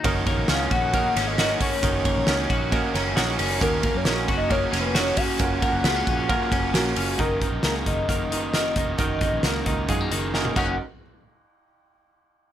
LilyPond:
<<
  \new Staff \with { instrumentName = "Soft synth lead" } { \time 4/4 \key fis \major \tempo 4 = 134 r4 eis''8 fis''4~ fis''16 dis''8. cis''8~ | cis''2.~ cis''8 r8 | ais'8. cis''16~ \tuplet 3/2 { cis''8. r16 dis''8 cis''4 b'8 } cis''8 fis''8~ | fis''2. fis'4 |
ais'4 ais'8 dis''2~ dis''8~ | dis''2. r8 fis''8 | r1 | }
  \new Staff \with { instrumentName = "Upright piano" } { \time 4/4 \key fis \major << { r1 | r2 r8 ais''8 fis''4 | r1 | r1 |
r1 | r4. dis''8 eis''8 fis''8 gis''8 r8 | r1 | } \\ { <cis' dis' fis' ais'>8 r8 <cis' dis' fis' ais'>8 r8 <cis' dis' fis' ais'>8 r8 <cis' dis' fis' ais'>8 r8 | <cis' dis' fis' ais'>8 r8 <cis' dis' fis' ais'>8 r8 <cis' dis' fis' ais'>8 r8 <cis' dis' fis' ais'>8 r8 | <cis' dis' fis' ais'>8 r8 <cis' dis' fis' ais'>8 r8 <cis' dis' fis' ais'>8 r8 <cis' dis' fis' ais'>8 r8 | <cis' eis' fis' ais'>8 r8 <cis' eis' fis' gis'>8 r8 <cis' eis' fis' ais'>8 r8 <cis' eis' fis' ais'>8 r8 |
<dis' fis' ais'>8 r8 <dis' fis' gis'>8 r8 <dis' fis' ais'>8 r8 <dis' fis' ais'>8 r8 | <dis' fis' ais'>8 r8 <dis' fis' ais'>8 r8 <dis' fis' gis'>8 r8 <dis' fis' ais'>8 <dis' fis' ais'>8 | r1 | } >> }
  \new Staff \with { instrumentName = "Overdriven electric guitar" } { \time 4/4 \key fis \major <fis ais dis' ais' cis''>8 <dis' ais' cis''>8 <fis ais dis' ais' cis''>8 <dis' ais' cis''>8 <ais dis' ais' cis''>8 <dis' ais' cis''>8 <fis ais dis' ais' cis''>8 <dis' ais' cis''>8 | <fis ais dis' ais' cis''>8 <dis' ais' cis''>8 <fis ais dis' ais' cis''>8 <dis' ais' cis''>8 <ais dis' ais' cis''>8 <dis' ais' cis''>8 <fis ais dis' ais' cis''>8 <dis' ais' cis''>8 | <dis ais cis' fis'>8 <ais cis' fis'>8 <dis ais cis' fis'>8 <ais cis' fis'>8 <dis ais cis' fis'>8 <ais cis' fis'>8 <dis ais cis' fis'>8 <ais cis' fis'>8 | <fis ais cis' eis'>8 <ais cis' eis'>8 <fis ais cis' eis'>8 <ais cis' eis'>8 <fis ais cis' eis'>8 <ais cis' eis'>8 <fis ais cis' eis'>8 <ais cis' eis'>8 |
<fis cis' dis' ais'>8 <cis' dis' ais'>8 <fis cis' dis' ais'>8 <cis' dis' ais'>8 <fis cis' dis' ais'>8 <cis' dis' ais'>8 <fis cis' dis' ais'>8 <cis' dis' ais'>8 | <fis cis' dis' ais'>8 <cis' dis' ais'>8 <fis cis' dis' ais'>8 <cis' dis' ais'>8 <fis cis' dis' ais'>8 <cis' dis' ais'>8 <fis cis' dis' ais'>8 <fis cis' dis' ais'>8 | r1 | }
  \new Staff \with { instrumentName = "Clean electric guitar" } { \time 4/4 \key fis \major dis8 ais8 cis'8 fis'8 ais8 cis'8 fis'8 cis'8 | dis8 ais8 cis'8 fis'8 ais8 cis'8 fis'8 cis'8 | ais8 ais8 cis'8 fis'8 ais8 cis'8 fis'8 cis'8 | r8 ais8 b16 cis'8. ais8 cis'4 cis'8 |
dis8 dis8 ais8 dis8 ais8 dis8 ais8 dis8 | dis8 dis8 ais8 dis8 gis16 ais16 dis8 ais8 <dis ais cis'>8 | r1 | }
  \new Staff \with { instrumentName = "Fingered electric bass" } { \clef bass \time 4/4 \key fis \major fis,,8. ais,,16 cis,8 ais,,4 gis,,4 r8 | fis,,8. ais,,16 cis,8 ais,,8. r16 fis,,8 ais,,8 fis,,8 | dis,8. fis,16 ais,,8 fis,,4 eis,,4 r8 | fis,,8 r16 fis,,16 cis,8 ais,,8. r16 fis,,8 ais,,8 fis,,8 |
fis,,8. ais,,16 cis,8 fis,,2 eis,,8 | fis,,8. ais,,16 cis,8 cis,8 fis,8 fis,,4 fis,,8 | r1 | }
  \new DrumStaff \with { instrumentName = "Drums" } \drummode { \time 4/4 <bd cymr>8 <bd cymr>8 <cymr sn>8 <bd cymr>8 <bd cymr>8 <cymr sn>8 <cymr sn>8 <hho bd cymr>8 | <hhp bd cymr>8 <bd cymr>8 <cymr sn>8 <bd cymr>8 <bd cymr>8 <cymr sn>8 <cymr sn>8 <hho cymr>8 | <hhp bd cymr>8 <bd cymr>8 <cymr sn>8 <bd cymr>8 <bd cymr>8 <cymr sn>8 <cymr sn>8 <hho bd cymr>8 | <hhp bd cymr>8 <bd cymr>8 <cymr sn>8 <bd cymr>8 <bd cymr>8 <bd cymr>8 <cymr sn>8 <hho cymr>8 |
<hh bd>8 <hh bd>8 <hh sn>8 <hh bd>8 <hh bd>8 hh8 <hh sn>8 <hh bd>8 | <hh bd>8 <hh bd>8 <hh sn>8 <hh bd>8 <hh bd>8 hh8 sn16 tommh16 <cymc bd>8 | r4 r4 r4 r4 | }
>>